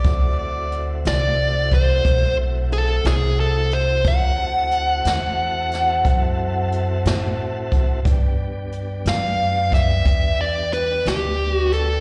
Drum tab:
HH |x-xx-xx-xx-x|x-xx-xx-xx-x|x-xx-xx-xx-x|
SD |---o-o---o--|---o-o---o--|---o-o---o--|
BD |o----oo-----|o-----o----o|o----oo-----|